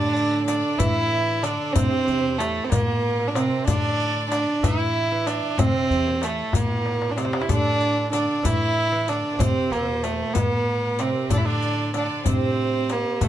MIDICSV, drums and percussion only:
0, 0, Header, 1, 3, 480
1, 0, Start_track
1, 0, Tempo, 637010
1, 1327, Time_signature, 6, 3, 24, 8
1, 10008, End_track
2, 0, Start_track
2, 0, Title_t, "Riq"
2, 122, Note_on_c, 9, 54, 18
2, 197, Note_off_c, 9, 54, 0
2, 360, Note_on_c, 9, 54, 50
2, 435, Note_off_c, 9, 54, 0
2, 601, Note_on_c, 9, 54, 66
2, 676, Note_off_c, 9, 54, 0
2, 1083, Note_on_c, 9, 54, 48
2, 1158, Note_off_c, 9, 54, 0
2, 1322, Note_on_c, 9, 54, 67
2, 1397, Note_off_c, 9, 54, 0
2, 1567, Note_on_c, 9, 54, 20
2, 1642, Note_off_c, 9, 54, 0
2, 1811, Note_on_c, 9, 54, 47
2, 1886, Note_off_c, 9, 54, 0
2, 2049, Note_on_c, 9, 54, 68
2, 2124, Note_off_c, 9, 54, 0
2, 2532, Note_on_c, 9, 54, 39
2, 2607, Note_off_c, 9, 54, 0
2, 2769, Note_on_c, 9, 54, 69
2, 2845, Note_off_c, 9, 54, 0
2, 3014, Note_on_c, 9, 54, 17
2, 3090, Note_off_c, 9, 54, 0
2, 3252, Note_on_c, 9, 54, 45
2, 3327, Note_off_c, 9, 54, 0
2, 3497, Note_on_c, 9, 54, 61
2, 3572, Note_off_c, 9, 54, 0
2, 3972, Note_on_c, 9, 54, 40
2, 4047, Note_off_c, 9, 54, 0
2, 4211, Note_on_c, 9, 54, 62
2, 4287, Note_off_c, 9, 54, 0
2, 4457, Note_on_c, 9, 54, 18
2, 4532, Note_off_c, 9, 54, 0
2, 4693, Note_on_c, 9, 54, 44
2, 4768, Note_off_c, 9, 54, 0
2, 4934, Note_on_c, 9, 54, 64
2, 5010, Note_off_c, 9, 54, 0
2, 5408, Note_on_c, 9, 54, 40
2, 5483, Note_off_c, 9, 54, 0
2, 5646, Note_on_c, 9, 54, 62
2, 5721, Note_off_c, 9, 54, 0
2, 5882, Note_on_c, 9, 54, 18
2, 5957, Note_off_c, 9, 54, 0
2, 6126, Note_on_c, 9, 54, 49
2, 6201, Note_off_c, 9, 54, 0
2, 6367, Note_on_c, 9, 54, 67
2, 6442, Note_off_c, 9, 54, 0
2, 6841, Note_on_c, 9, 54, 44
2, 6917, Note_off_c, 9, 54, 0
2, 7084, Note_on_c, 9, 54, 64
2, 7159, Note_off_c, 9, 54, 0
2, 7328, Note_on_c, 9, 54, 19
2, 7404, Note_off_c, 9, 54, 0
2, 7563, Note_on_c, 9, 54, 46
2, 7638, Note_off_c, 9, 54, 0
2, 7799, Note_on_c, 9, 54, 68
2, 7874, Note_off_c, 9, 54, 0
2, 8279, Note_on_c, 9, 54, 41
2, 8354, Note_off_c, 9, 54, 0
2, 8518, Note_on_c, 9, 54, 60
2, 8593, Note_off_c, 9, 54, 0
2, 8758, Note_on_c, 9, 54, 20
2, 8834, Note_off_c, 9, 54, 0
2, 8997, Note_on_c, 9, 54, 40
2, 9073, Note_off_c, 9, 54, 0
2, 9235, Note_on_c, 9, 54, 56
2, 9311, Note_off_c, 9, 54, 0
2, 9716, Note_on_c, 9, 54, 37
2, 9791, Note_off_c, 9, 54, 0
2, 9957, Note_on_c, 9, 54, 54
2, 10008, Note_off_c, 9, 54, 0
2, 10008, End_track
3, 0, Start_track
3, 0, Title_t, "Tombak"
3, 363, Note_on_c, 9, 63, 75
3, 438, Note_off_c, 9, 63, 0
3, 601, Note_on_c, 9, 64, 76
3, 677, Note_off_c, 9, 64, 0
3, 1081, Note_on_c, 9, 63, 68
3, 1156, Note_off_c, 9, 63, 0
3, 1322, Note_on_c, 9, 64, 88
3, 1398, Note_off_c, 9, 64, 0
3, 1810, Note_on_c, 9, 63, 72
3, 1885, Note_off_c, 9, 63, 0
3, 2050, Note_on_c, 9, 64, 81
3, 2125, Note_off_c, 9, 64, 0
3, 2527, Note_on_c, 9, 63, 80
3, 2603, Note_off_c, 9, 63, 0
3, 2771, Note_on_c, 9, 64, 96
3, 2846, Note_off_c, 9, 64, 0
3, 3016, Note_on_c, 9, 62, 27
3, 3091, Note_off_c, 9, 62, 0
3, 3253, Note_on_c, 9, 63, 68
3, 3329, Note_off_c, 9, 63, 0
3, 3495, Note_on_c, 9, 64, 95
3, 3570, Note_off_c, 9, 64, 0
3, 3972, Note_on_c, 9, 63, 62
3, 4047, Note_off_c, 9, 63, 0
3, 4211, Note_on_c, 9, 64, 105
3, 4286, Note_off_c, 9, 64, 0
3, 4685, Note_on_c, 9, 63, 61
3, 4760, Note_off_c, 9, 63, 0
3, 4922, Note_on_c, 9, 64, 89
3, 4997, Note_off_c, 9, 64, 0
3, 5167, Note_on_c, 9, 63, 55
3, 5229, Note_on_c, 9, 62, 59
3, 5242, Note_off_c, 9, 63, 0
3, 5288, Note_on_c, 9, 63, 60
3, 5304, Note_off_c, 9, 62, 0
3, 5346, Note_on_c, 9, 62, 72
3, 5363, Note_off_c, 9, 63, 0
3, 5407, Note_on_c, 9, 63, 73
3, 5421, Note_off_c, 9, 62, 0
3, 5463, Note_on_c, 9, 62, 80
3, 5482, Note_off_c, 9, 63, 0
3, 5525, Note_on_c, 9, 63, 85
3, 5538, Note_off_c, 9, 62, 0
3, 5587, Note_on_c, 9, 62, 87
3, 5601, Note_off_c, 9, 63, 0
3, 5646, Note_on_c, 9, 64, 83
3, 5662, Note_off_c, 9, 62, 0
3, 5722, Note_off_c, 9, 64, 0
3, 6128, Note_on_c, 9, 63, 62
3, 6203, Note_off_c, 9, 63, 0
3, 6367, Note_on_c, 9, 64, 84
3, 6443, Note_off_c, 9, 64, 0
3, 6851, Note_on_c, 9, 63, 57
3, 6926, Note_off_c, 9, 63, 0
3, 7091, Note_on_c, 9, 64, 91
3, 7167, Note_off_c, 9, 64, 0
3, 7570, Note_on_c, 9, 63, 63
3, 7645, Note_off_c, 9, 63, 0
3, 7804, Note_on_c, 9, 64, 84
3, 7880, Note_off_c, 9, 64, 0
3, 8286, Note_on_c, 9, 63, 61
3, 8361, Note_off_c, 9, 63, 0
3, 8523, Note_on_c, 9, 64, 83
3, 8598, Note_off_c, 9, 64, 0
3, 8763, Note_on_c, 9, 62, 28
3, 8839, Note_off_c, 9, 62, 0
3, 8996, Note_on_c, 9, 63, 67
3, 9072, Note_off_c, 9, 63, 0
3, 9234, Note_on_c, 9, 64, 75
3, 9309, Note_off_c, 9, 64, 0
3, 9718, Note_on_c, 9, 63, 68
3, 9794, Note_off_c, 9, 63, 0
3, 9955, Note_on_c, 9, 64, 80
3, 10008, Note_off_c, 9, 64, 0
3, 10008, End_track
0, 0, End_of_file